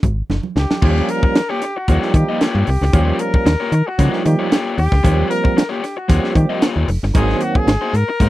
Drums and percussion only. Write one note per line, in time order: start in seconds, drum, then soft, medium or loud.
0.03 kick medium
0.03 closed hi-hat medium
0.03 muted conga medium
0.03 low conga medium
0.30 snare medium
0.30 high conga medium
0.43 high conga medium
0.57 snare medium
0.71 snare medium
0.71 high conga medium
0.82 kick loud
0.82 crash loud
0.96 snare soft
1.09 closed hi-hat medium
1.23 kick loud
1.35 snare loud
1.35 closed hi-hat medium
1.62 snare soft
1.62 closed hi-hat medium
1.88 kick medium
1.88 closed hi-hat medium
2.03 snare soft
2.14 kick loud
2.14 closed hi-hat medium
2.41 snare loud
2.41 closed hi-hat medium
2.67 open hi-hat medium
2.82 snare soft
2.93 kick loud
2.93 closed hi-hat loud
3.19 closed hi-hat medium
3.34 kick loud
3.47 snare loud
3.47 closed hi-hat medium
3.72 closed hi-hat medium
3.99 kick medium
3.99 closed hi-hat loud
4.13 snare soft
4.26 closed hi-hat medium
4.52 snare loud
4.52 closed hi-hat medium
4.78 open hi-hat medium
4.92 kick loud
4.92 snare soft
5.05 kick loud
5.05 closed hi-hat loud
5.31 closed hi-hat medium
5.45 kick loud
5.58 snare loud
5.58 closed hi-hat medium
5.84 snare soft
5.84 closed hi-hat medium
6.09 kick loud
6.09 closed hi-hat loud
6.24 snare soft
6.35 kick loud
6.35 closed hi-hat medium
6.62 snare loud
6.62 closed hi-hat medium
6.88 open hi-hat medium
7.03 snare soft
7.15 kick loud
7.15 closed hi-hat loud
7.30 snare soft
7.41 closed hi-hat medium
7.55 kick loud
7.68 snare loud
7.68 closed hi-hat loud
7.94 closed hi-hat medium
8.20 kick medium
8.20 closed hi-hat medium